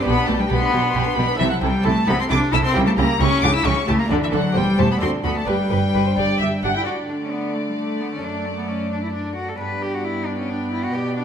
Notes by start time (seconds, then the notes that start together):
0.02 B1 B2 B3 D4 G4 B5
0.15 D4 B4
0.26 B1 B2 A3 B3 G4 A5
0.38 G3 D4 B4 G5
0.48 B1 B2 B3 G4 B5
0.58 D4 B4 C6
0.65 B5
0.72 B1 B2 B3 G4 C6
0.81 D4 B4 B5
0.89 C6
0.94 B1 B2 B3 G4 B5
1.05 D4 B4 C6
1.13 B2 B3 G4 B5
1.18 B1
1.28 D4 B4
1.33 C4 E4 A4
1.38 C2 C3 E3 E4 A4 E5
1.50 F#3 F#5
1.61 C2 C3 G3 E4 A4 G5
1.83 C2 C3 A3 E4 A4 A5
2.07 C2 C3 B3 E4 A4 B5
2.19 C4 C6
2.29 C2 C3 D4 E4 A4 D6
2.51 C2 C3 E4 A4 E6
2.64 C4 C6
2.71 C#2 C#3 A#3 E4 G4 G5
2.77 G3
2.86 A3 A5
2.97 C#2 C#3 A#3 E4 G4 A#5
3.20 C#2 C#3 C#4 E4 G4 C#6
3.41 C#2 C#3 D4 E4 G4 D6
3.54 E4 E6
3.64 C#2 C#3 C#4 E4 G4 C#6
3.87 C#2 C#3 A3 E4 G4 A5
3.99 A#3 A#5
4.06 A3 D4 A4
4.10 D2 D3 D4 A4 D5
4.22 E3 E5
4.33 D2 D3 F#3 D4 A4 F#5
4.52 E1 E2 G4 C5 G5
4.57 G3
4.78 E1 E2 A3 G4 C5 A5
4.91 B3 B5
4.97 D2 D4 A4
5.01 D2 C4 F#4 A4 C6
5.24 D2 B3 F#4 A4 B5
5.37 A3 A5
5.45 G1 G2 G3 D4 G4 B4 G5
5.70 G1 G2 G4 B4
5.93 G1 G2 G4 B4
6.06 C5
6.17 G1 G2 G4 D5
6.39 G1 G2 G4 E5
6.63 G1 G2 D4 G4 F#5
6.76 E4 G5
6.82 A3 D4
6.86 D3 A3 F#4 D5 A5
7.09 D4
7.23 C#4
7.31 B3
7.54 A3
7.67 G3
7.77 A3
8.00 B3
8.13 C#4
8.19 F#2 A3 D4
8.23 F#2 D4
8.45 A3
8.57 B3
8.68 C#4
8.91 D4
9.03 E4
9.13 D4
9.36 F#4
9.49 A4
9.57 G2 B3 D4 B4 D5
9.62 G5
9.82 G4
9.94 F#4
10.04 E4
10.26 D4
10.38 C#4
10.49 D4
10.72 E4
10.84 F#4
10.92 B2 B3 D4 G4
11.16 D4